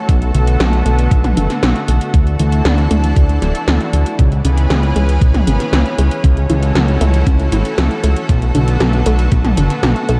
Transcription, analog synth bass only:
0.09 0.31 B1 loud
0.34 0.57 B1 medium
0.60 0.83 B1 loud
0.86 1.08 B1 medium
1.11 1.34 B1 medium
1.37 1.48 F#1 medium
1.63 1.74 B1 loud
1.88 2.00 B1 medium
2.14 2.37 D2 loud
2.40 2.62 D2 medium
2.65 2.88 D2 loud
2.91 3.14 D2 medium
3.16 3.39 D2 medium
3.42 3.53 D1 medium
3.68 3.79 D2 loud
3.93 4.05 D2 medium
4.19 4.42 C#2 loud
4.44 4.67 C#2 medium
4.70 4.93 C#2 loud
4.96 5.19 C#2 medium
5.21 5.44 C#2 medium
5.47 5.58 G#1 medium
5.73 5.84 C#2 loud
5.98 6.10 C#2 medium
6.24 6.47 C#2 loud
6.50 6.72 C#2 loud
6.75 6.98 C#2 loud
7.01 7.24 C#2 medium
7.27 7.49 C#2 medium
7.52 7.64 G#1 medium
7.78 7.89 C#2 loud
8.04 8.15 C#2 medium
8.29 8.52 B1 loud
8.55 8.78 B1 medium
8.80 9.03 B1 loud
9.06 9.29 B1 medium
9.32 9.55 B1 medium
9.57 9.69 F#1 medium
9.83 9.94 B1 loud
10.09 10.20 B1 medium

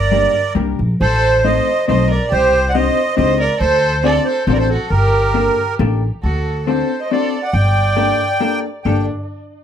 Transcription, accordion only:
0.00 0.53 D5 loud
1.01 1.47 C5 loud
1.45 1.86 D#5 loud
1.87 2.11 D#5 loud
2.11 2.33 D5 medium
2.32 2.70 C5 loud
2.69 2.75 F#5 medium
2.74 3.15 D#5 loud
3.17 3.40 D#5 loud
3.40 3.59 D5 medium
3.60 4.05 C5 loud
4.04 4.27 D5 loud
4.25 4.45 C5 medium
4.46 4.52 C5 medium
4.53 4.58 D5 medium
4.58 4.69 C5 loud
4.69 4.91 A4 medium
4.90 5.75 A#4 loud
6.23 6.68 A4 medium
6.67 7.01 C5 medium
7.00 7.11 D#5 medium
7.12 7.45 D5 medium
7.43 7.54 F#5 medium
7.53 8.59 G5 loud
8.84 9.06 G5 medium

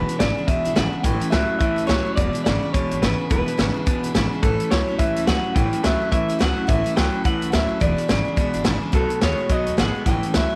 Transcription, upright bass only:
0.20 0.33 G#1 loud
0.48 0.61 E1 medium
0.65 0.74 G#1 medium
0.76 0.90 G#1 medium
0.94 muted upright bass stroke medium
1.04 1.18 A1 loud
1.22 muted upright bass stroke medium
1.33 1.46 C#2 medium
1.61 1.74 A1 medium
1.78 1.87 C#2 medium
1.89 2.02 C#2 medium
2.06 muted upright bass stroke medium
2.18 2.31 E1 loud
2.46 2.59 G#1 loud
2.63 muted upright bass stroke medium
2.74 2.88 E1 medium
2.91 3.00 G#1 medium
3.02 3.15 G#1 medium
3.19 muted upright bass stroke medium
3.31 3.44 E1 medium
3.58 3.72 G#1 medium
3.87 4.00 E1 medium
4.04 4.13 G#1 medium
4.15 4.28 G#1 medium
4.43 4.57 A1 loud
4.72 4.85 C#2 medium
5.00 5.13 A1 medium
5.16 5.25 C#2 medium
5.28 5.41 C#2 loud
5.45 muted upright bass stroke medium
5.56 5.69 A1 loud
5.73 muted upright bass stroke medium
5.85 5.98 C#2 loud
6.13 6.26 A1 medium
6.30 6.39 C#2 medium
6.42 6.54 C#2 medium
6.59 muted upright bass stroke medium
6.69 6.82 A1 loud
6.98 7.11 C#2 medium
7.25 7.39 A1 medium
7.43 7.51 C#2 medium
7.54 7.67 D2 medium
7.81 7.95 E1 loud
8.10 8.23 G#1 loud
8.26 muted upright bass stroke medium
8.38 8.51 E1 medium
8.54 8.63 G#1 medium
8.66 8.79 G#1 medium
8.82 muted upright bass stroke medium
8.93 9.07 B1 loud
9.11 muted upright bass stroke medium
9.22 9.36 D#2 medium
9.50 9.63 B1 medium
9.67 9.76 D#2 medium
9.78 9.92 G#1 loud
10.06 10.20 A1 loud
10.35 10.48 C#2 loud

